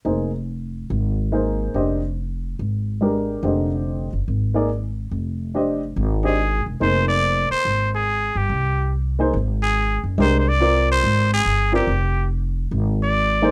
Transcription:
0.05 0.85 F1 medium
0.05 0.30 A#3 soft
0.05 0.30 D#4 soft
0.05 0.30 G#4 soft
0.05 0.31 C5 soft
0.90 1.70 G#1 medium
1.32 1.96 A#3 medium
1.32 1.96 D#4 soft
1.32 1.97 G#4 soft
1.32 1.74 C5 medium
1.74 2.55 F1 medium
1.74 1.99 D4 soft
1.74 1.99 G4 soft
1.74 2.00 C5 medium
1.74 2.00 D#5 medium
2.59 3.39 G#1 medium
3.01 3.65 G#3 soft
3.01 3.65 D4 soft
3.01 3.42 G4 soft
3.01 3.66 A#4 medium
3.43 4.08 F1 medium
3.43 4.07 D3 soft
3.43 4.07 G4 soft
3.43 4.08 C5 soft
3.43 4.08 D#5 soft
4.13 4.26 F#1 medium
4.28 5.08 G#1 medium
4.54 4.68 A#3 medium
4.54 4.68 D#4 soft
4.54 4.68 G#4 medium
4.54 4.69 D5 medium
5.11 5.92 F1 medium
5.55 5.79 D4 soft
5.55 5.79 G4 soft
5.55 5.80 C5 soft
5.55 5.80 D#5 medium
5.96 6.62 G#1 medium
6.23 6.37 D4 soft
6.23 6.37 G4 soft
6.23 6.64 G#4 medium
6.23 6.37 C5 soft
6.23 6.38 D#5 medium
6.66 6.80 E1 medium
6.80 7.47 F1 medium
6.80 7.98 A#3 soft
6.80 7.99 D#4 soft
6.80 7.99 G#4 soft
6.80 7.99 C5 medium
6.80 7.07 C5 medium
7.08 7.47 D5 medium
7.51 7.90 C5 medium
7.51 muted upright bass stroke soft
7.65 8.31 G#1 medium
7.95 8.39 G#4 medium
8.35 8.49 G1 medium
8.35 8.93 G4 medium
8.49 9.30 C2 medium
9.19 9.32 A#3 medium
9.19 9.33 D#4 soft
9.19 9.33 G#4 medium
9.19 9.33 C5 medium
9.34 10.00 G#1 medium
9.63 10.02 G#4 medium
10.04 10.17 F#1 medium
10.18 10.99 C2 medium
10.18 10.43 G#3 medium
10.18 10.43 D4 soft
10.18 10.44 G4 soft
10.18 10.44 A#4 medium
10.18 10.37 C5 medium
10.39 10.50 C5 medium
10.49 10.90 D5 loud
10.60 11.25 C4 medium
10.60 11.25 F4 medium
10.60 11.26 A#4 medium
10.60 11.26 D5 medium
10.92 11.30 C5 loud
11.03 11.43 G#1 medium
11.33 11.72 G#4 medium
11.46 11.85 G1 medium
11.72 11.86 C4 medium
11.72 11.86 F4 medium
11.72 12.28 G4 medium
11.72 11.87 A#4 medium
11.72 11.87 D5 medium
11.87 12.68 F1 medium
12.71 13.51 G#1 medium
13.03 13.51 D5 medium
13.42 13.51 A#3 medium
13.42 13.51 D#4 medium
13.42 13.51 G#4 medium
13.42 13.51 C5 medium

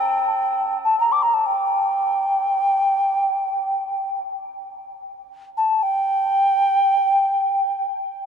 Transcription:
0.00 0.23 G4 soft
0.00 8.26 A4 soft
0.00 0.78 G5 medium
0.84 0.98 A5 medium
1.00 1.14 A#5 medium
1.12 1.24 D6 medium
1.23 1.35 A#5 medium
1.34 1.48 A5 medium
1.46 4.21 G5 medium
5.57 5.84 A5 medium
5.83 7.86 G5 medium

